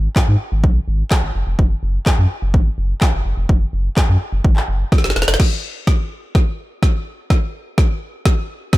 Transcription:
0.16 G#2, kick, snare, clap
0.28 G#2
0.52 G#1
0.64 B1, kick
0.88 G#1
1.11 kick, snare, clap
1.23 G#1
1.35 F#1
1.47 F1
1.59 F#1, kick
1.83 F#1
2.06 F#2, kick, snare, clap
2.18 F#2
2.42 F#1
2.54 G#1, kick
2.78 F#1
3.01 kick, snare, clap
3.14 F#1
3.25 F#1
3.37 F1
3.49 F#1, kick
3.73 F#1
3.97 F#2, kick, snare, clap
4.09 F#2
4.33 F#1
4.45 G#1, kick
4.56 clap
4.68 F#1
4.92 kick, snare
4.98 snare
5.04 F#1, snare
5.10 snare
5.16 F1, snare
5.22 snare
5.28 F#1, snare
5.34 snare
5.40 kick, snare, crash
5.87 kick, snare
6.35 kick, snare
6.83 kick, snare
7.30 kick, snare
7.78 kick, snare
8.25 kick, snare
8.73 kick, snare

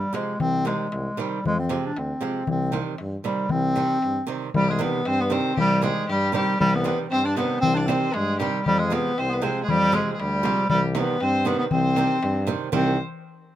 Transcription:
Already playing: G3
0.02 darbuka tek
0.13 C3 F3 G#3 C4, darbuka tek
0.27 darbuka tek
0.40 C2 C4, darbuka dum
0.65 C3 D#3 G3 G#3 C4, darbuka tek
0.80 darbuka tek
0.92 C2, darbuka tek
1.17 C3 D#3 G3 C4, darbuka tek
1.32 darbuka tek
1.45 F2 G#3, darbuka dum
1.60 C4
1.69 C3 F3 G#3 C4, darbuka tek
1.84 D4, darbuka tek
1.97 D2 C4, darbuka tek
2.21 C3 F3 G#3 C4, darbuka tek
2.35 darbuka tek
2.47 C2 C4, darbuka dum
2.72 C3 D#3 G3 C4, darbuka tek
2.86 darbuka tek
2.98 G2, darbuka tek
3.24 C3 D#3 G3 C4, darbuka tek
3.38 darbuka tek
3.49 C2 C4, darbuka dum
3.63 darbuka tek
3.76 C3 D#3 G3 C4, darbuka tek
4.02 G2, darbuka tek
4.16 darbuka tek
4.27 C3 D#3 G3 C4, darbuka tek
4.42 darbuka tek
4.54 C2 G3 G4, darbuka dum
4.70 G#3 G#4
4.79 C3 D#3 G3 B3 C4 B4
5.05 G2 C4 C5, darbuka tek
5.20 B3 B4
5.30 C3 D#3 G3 C4 C5, darbuka tek
5.45 darbuka tek
5.57 C2 G3 G4, darbuka dum
5.82 C3 D#3 G3 G#3 C4 G#4, darbuka tek
5.96 darbuka tek
6.09 G2 G3 G4, darbuka tek
6.32 C3 D#3 G3 C4 G4, darbuka tek
6.49 darbuka tek
6.60 C2 G3 G4, darbuka dum
6.73 B3 B4
6.84 C3 D#3 G3 B3 C4 B4, darbuka tek
7.00 darbuka tek
7.11 G2 C4 C5, darbuka tek
7.25 D4 D5
7.36 C3 D#3 G3 B3 C4 B4, darbuka tek
7.50 darbuka tek
7.61 C2 C4 C5, darbuka dum
7.75 D4 D5, darbuka tek
7.87 C3 D#3 G3 C4 C5, darbuka tek
8.01 darbuka tek
8.13 G2 G#3 G#4, darbuka tek
8.27 darbuka tek
8.39 C3 D#3 G3 C4 G4, darbuka tek
8.54 darbuka tek
8.65 F2 G3 G4, darbuka dum
8.79 G#3 G#4
8.90 C3 F3 G#3 B3 C4 B4, darbuka tek
9.06 darbuka tek
9.18 C2 C4 C5, darbuka tek
9.30 B3 B4
9.42 C3 F3 G#3 C4 C5, darbuka tek
9.56 darbuka tek
9.63 G#3 G#4
9.69 F2 G3 G4, darbuka dum
9.92 C3 F3 G#3 C4
9.97 G#4
10.07 darbuka tek
10.13 G#3 G#4
10.20 D2 G3 G4, darbuka tek
10.43 C3 F3 G#3 C4, darbuka tek
10.58 darbuka tek
10.70 C2 G3 G4, darbuka dum
10.95 C3 D#3 G3 B3 C4 B4, darbuka tek
11.09 darbuka tek
11.20 G2 C4 C5, darbuka tek
11.45 C3 D#3 G3 B3 C4 B4
11.59 B3 B4
11.71 C2 C4 C5, darbuka dum
11.96 C3 D#3 G3 C4, darbuka tek
12.10 darbuka tek
12.23 G2, darbuka tek
12.35 darbuka tek
12.47 C3 D#3 G3 C4, darbuka tek
12.60 darbuka tek
12.72 C2 C3 D#3 G3 C4 C5, darbuka dum

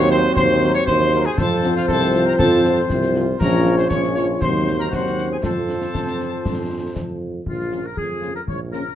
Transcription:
Already playing: D#2 F#3 C4 F#4 C5 C#6
0.11 F#3 C4 A#4 C5 C6, snare
0.36 D#2 C5 C6, concert bass drum, snare
0.62 F#3 C4 A#4, snare
0.74 C#5 C#6
0.87 D#2 C5 C6, concert bass drum, snare
1.00 snare
1.12 F#3 C4 A#4, snare
1.26 G#4 G#5
1.38 F2 F3 C4 F4 A4 C5 A5, concert bass drum, snare
1.63 F3 C4 F4, snare
1.76 F4 F5, snare
1.88 C2 A4 A5, concert bass drum, snare
2.01 snare
2.14 F3 C4 F4, snare
2.26 A#4 A#5
2.39 F2 A4 A5, concert bass drum, snare
2.64 F3 C4 F4, snare
2.90 C2, concert bass drum, snare
3.03 snare
3.15 F3 C4 F4, snare
3.40 A#1 F3 C#4 F4 A#4 C#5 A#5, concert bass drum, snare, crash
3.66 snare
3.78 C5 C6, snare
3.90 A#1 F3 C#4 F4 C#5 C#6, concert bass drum, snare
3.94 C#5
4.04 snare
4.15 C#5 C#6, snare
4.40 D#2 F#3 C4 D#4 F#4 C5 C6, concert bass drum, snare
4.67 snare
4.79 A#4 A#5
4.91 D#2 F#3 C4 D#4 F#4 C5 F#5, concert bass drum, snare
4.95 F#4
5.06 snare
5.18 C#4, snare
5.31 G#4 G#5
5.43 F2 F3 C4 F4 A4 C5 A5, concert bass drum, snare
5.69 snare
5.81 snare
5.94 F2, concert bass drum, snare
6.07 snare
6.20 snare
6.45 F2, concert bass drum, snare
6.96 F2, concert bass drum, snare
7.46 A#1 F4, concert bass drum
7.71 C#3 A#3 C#4 F4, snare
7.85 A#4
7.97 F2 G#4, concert bass drum
8.21 C#3 A#3 C#4 F4, snare
8.35 A#4
8.47 A#1 C#5, concert bass drum
8.72 C#3 A#3 C#4 F4 A#4, snare

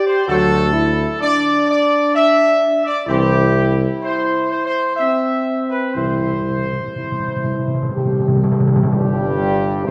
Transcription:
Already playing: G4
0.07 C5
0.27 D2 F#3 A3 F#4 A4
0.73 E4
1.20 D4 D5
1.68 D5
2.15 E5
2.85 D5
3.06 C2 E3 C4 E4 G4
4.03 C5
4.50 C5
4.66 C5
4.97 C4 E5
5.70 B4
5.94 C2 C3 E3 C4 E4 C5
6.05 C3
6.12 C3
6.20 C3
6.27 C3
6.41 C3
6.50 C3
6.58 C3
6.65 C3
6.73 C3
6.80 C3
6.88 C3
6.94 C3 E4
7.04 C3
7.12 C3
7.20 C3
7.28 C3
7.36 C3
7.44 C3
7.52 C3
7.59 C3
7.68 C3
7.74 C3
7.83 C3
7.89 C3
7.94 C3 G4
8.05 C3
8.13 C3
8.20 C3
8.28 C3
8.36 C3
8.42 C3 G4
8.52 C3
8.60 C3
8.68 C3
8.76 C3
8.83 C3
8.91 G1 G2 C3 G3 G4
9.86 C3 C5

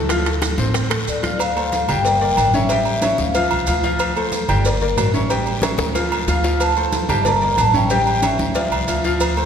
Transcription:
Already playing: D2
0.09 F3 F4 F5, high bongo, high conga, high timbale, long guiro, maracas
0.26 A3 A4 A5, high bongo, high conga, high timbale, maracas
0.42 high bongo, high conga, high timbale, short guiro, maracas
0.57 A1 C4 C5 C6, high conga, short guiro, maracas
0.74 high bongo, high conga, high timbale, long guiro, maracas
0.90 A3 A4 A5, high bongo, high conga, high timbale, maracas
1.07 D2 D5, high conga, short guiro, maracas
1.23 F4 F5 F6, low bongo, high conga, high timbale, short guiro, maracas
1.39 F5, cowbell, high conga, low agogo, long guiro, maracas
1.56 A3 A4 C5, high conga, low agogo, maracas
1.72 cowbell, high conga, short guiro, maracas
1.88 G1 G3 G4 G5, cowbell, high conga, low conga, low agogo, short guiro, maracas
2.05 A#3 A#4 D5, cowbell, high conga, long guiro, maracas
2.21 A#3 A#4 D5, high conga, maracas
2.36 A1, cowbell, high conga, low agogo, short guiro, maracas
2.53 C#4 C#5 E5, high conga, short guiro, maracas
2.69 G3 G4 G5, cowbell, high conga, low agogo, long guiro, maracas
2.85 high conga, low agogo, maracas
3.02 C#4 C#5 E5, cowbell, high conga, low agogo, short guiro, maracas
3.18 D2 F5, high conga, short guiro, maracas
3.34 F3 F4 F5, cowbell, high conga, low agogo, long guiro, maracas
3.51 C2, high conga, low agogo, maracas
3.67 D2 F3 F4 F5, cowbell, high conga, low agogo, short guiro, maracas
3.83 F3 F4 F5, cowbell, short guiro, maracas
3.99 cowbell, high conga, low agogo, long guiro, maracas
4.16 A3 A4 C5, high conga, low agogo, maracas
4.32 cowbell, high conga, short guiro, maracas
4.49 G1 G3 G4 G5, cowbell, high conga, low conga, low agogo, short guiro, maracas
4.65 A#3 A#4 D5, cowbell, high conga, long guiro, maracas
4.81 A#3 A#4 D5, high conga, maracas
4.97 A1, cowbell, high conga, low timbale, low agogo, short guiro, maracas
5.14 C#4 C#5 E5, high conga, short guiro, maracas
5.30 G3 G4 G5, cowbell, high conga, low agogo, long guiro, maracas
5.46 high conga, low agogo, maracas
5.62 C#4 C#5 E5, cowbell, high bongo, high conga, low agogo, short guiro, maracas
5.78 D2, high bongo, high conga, short guiro, maracas
5.94 F3 F4 F5, cowbell, high conga, low agogo, long guiro, maracas
6.10 high conga, low agogo, maracas
6.27 D2 F3 F4 F5, cowbell, low bongo, high conga, low agogo, short guiro, maracas
6.44 F3 F4 F5, cowbell, low bongo, short guiro, maracas
6.60 A5, cowbell, high conga, low agogo, long guiro, maracas
6.76 A3 A4 C5, high conga, low agogo, maracas
6.92 cowbell, high conga, short guiro, maracas
7.08 G1 G3 G4 G5 A5, cowbell, high conga, low conga, low agogo, short guiro, maracas
7.25 A#3 A#4 D5 A#5, cowbell, high conga, low conga, long guiro, maracas
7.41 A#3 A#4 D5, high conga, maracas
7.57 A1 A5, cowbell, high conga, low agogo, short guiro, maracas
7.74 C#4 C#5 E5 G5, high conga, short guiro, maracas
7.90 G3 G4 G5, cowbell, high conga, low agogo, long guiro, maracas
8.06 high conga, low agogo, maracas
8.22 C#4 C#5 E5, cowbell, high conga, low agogo, short guiro, maracas
8.38 D2, high conga, short guiro, maracas
8.55 F3 F4 D5, cowbell, high conga, low agogo, long guiro, maracas
8.71 C2, high conga, low agogo, maracas
8.87 D2 F3 F4 F5, cowbell, high conga, low agogo, short guiro, maracas
9.04 F3 F4 F5, cowbell, short guiro, maracas
9.20 cowbell, high conga, low agogo, long guiro, maracas
9.37 A3 A4 C5, high conga, low agogo, maracas

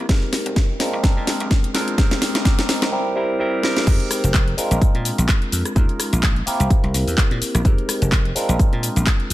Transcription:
0.08 G#3 C4 D#4 G4 A#4, kick, snare, closed hi-hat
0.33 snare, open hi-hat
0.46 F1, closed hi-hat
0.56 kick, snare, closed hi-hat
0.79 G#3 C4 D4 F4 A#4, snare, open hi-hat
0.93 A#1
1.03 G#3 C4 D4 G4 A#4, kick, snare, closed hi-hat
1.17 A#2
1.27 snare, open hi-hat
1.40 A#1, closed hi-hat
1.51 kick, snare, closed hi-hat
1.64 closed hi-hat
1.73 F2 G#3 C4 D4 F4 A#4, snare, open hi-hat
1.88 closed hi-hat
1.97 D#2 G#3 D#4 G4 A#4, kick, snare, closed hi-hat
2.11 snare
2.22 snare, open hi-hat
2.35 A#1, snare, closed hi-hat
2.44 G#3 C4 D#4 G4 A#4, kick, snare, closed hi-hat
2.59 snare
2.69 snare, open hi-hat
2.82 C2, snare
2.92 G3 C4 E4 G4 A#4
3.15 G3 C4 E4 G4 A#4
3.39 G3 C4 E4 G4 A#4
3.63 G3 C4 E4 G4 A#4, snare
3.77 snare
3.86 F2 G#3 C4 G4, kick, closed hi-hat, crash, shaker
4.00 closed hi-hat
4.11 cross-stick, open hi-hat, shaker
4.24 F1, closed hi-hat, shaker
4.34 kick, clap, closed hi-hat, shaker
4.48 closed hi-hat
4.57 G#3 C4 D4 F4 A#4, muted slap bass stroke, open hi-hat, shaker
4.71 A#1, closed hi-hat, shaker
4.82 kick, closed hi-hat, shaker
4.95 A#2, closed hi-hat
5.05 open hi-hat, shaker
5.18 A#1, closed hi-hat, shaker
5.29 kick, clap, closed hi-hat, shaker
5.42 closed hi-hat
5.52 F2, open hi-hat, shaker
5.65 cross-stick, closed hi-hat, shaker
5.75 D#2 G#3 C#4 D#4 F4 A#4, kick, closed hi-hat, shaker
5.89 closed hi-hat
6.00 cross-stick, open hi-hat, shaker
6.13 A#1, closed hi-hat, shaker
6.23 kick, clap, closed hi-hat, shaker
6.36 closed hi-hat
6.46 A#3 C4 E4 G4 A#4, muted slap bass stroke, open hi-hat, shaker
6.60 C2, closed hi-hat, shaker
6.70 kick, closed hi-hat, shaker
6.83 C2, closed hi-hat
6.94 C2, open hi-hat, shaker
7.07 E2, open hi-hat, shaker
7.18 kick, clap, closed hi-hat, shaker
7.31 A#2, closed hi-hat
7.41 muted slap bass stroke, open hi-hat, shaker
7.55 A#1, cross-stick, closed hi-hat, shaker
7.64 F2 G#3 C4 D#4 G4 A#4, kick, closed hi-hat, shaker
7.78 closed hi-hat
7.89 cross-stick, open hi-hat, shaker
8.02 F1, closed hi-hat, shaker
8.12 kick, clap, closed hi-hat, shaker
8.25 closed hi-hat
8.35 G#3 C4 D4 F4 A#4, muted slap bass stroke, open hi-hat, shaker
8.49 A#1, closed hi-hat, shaker
8.59 kick, closed hi-hat, shaker
8.73 A#2, closed hi-hat
8.83 open hi-hat, shaker
8.96 A#1, closed hi-hat, shaker
9.07 kick, clap, closed hi-hat, shaker
9.20 closed hi-hat
9.30 F2, open hi-hat

